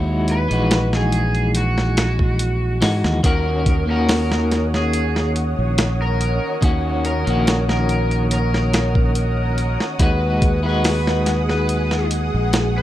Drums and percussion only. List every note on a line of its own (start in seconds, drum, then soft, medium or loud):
0.28 closed hi-hat medium
0.51 closed hi-hat soft
0.71 snare loud
0.71 closed hi-hat medium
0.93 snare medium
1.12 closed hi-hat medium
1.35 closed hi-hat soft
1.55 closed hi-hat medium
1.78 snare medium
1.97 snare loud
1.97 closed hi-hat medium
2.19 kick loud
2.39 closed hi-hat medium
2.82 snare loud
2.82 open hi-hat medium
3.04 snare medium
3.24 kick loud
3.24 closed hi-hat medium
3.66 kick medium
3.66 closed hi-hat medium
4.09 snare loud
4.09 open hi-hat medium
4.32 snare medium
4.51 snare soft
4.51 closed hi-hat medium
4.74 snare soft
4.93 closed hi-hat medium
5.16 snare medium
5.36 closed hi-hat medium
5.78 snare loud
5.78 closed hi-hat medium
6.21 closed hi-hat medium
6.62 kick loud
6.62 closed hi-hat medium
7.05 closed hi-hat medium
7.27 closed hi-hat soft
7.47 snare loud
7.47 closed hi-hat medium
7.69 snare medium
7.89 closed hi-hat medium
8.11 closed hi-hat soft
8.31 closed hi-hat medium
8.54 snare medium
8.73 snare loud
8.73 closed hi-hat medium
8.95 kick medium
9.15 closed hi-hat medium
9.58 closed hi-hat medium
9.80 snare medium
9.99 kick loud
9.99 closed hi-hat medium
10.42 kick loud
10.42 closed hi-hat medium
10.84 snare loud
10.84 open hi-hat medium
11.07 snare medium
11.26 snare soft
11.26 closed hi-hat medium
11.49 snare soft
11.69 closed hi-hat medium
11.91 snare medium
12.11 closed hi-hat medium
12.53 snare loud
12.53 closed hi-hat medium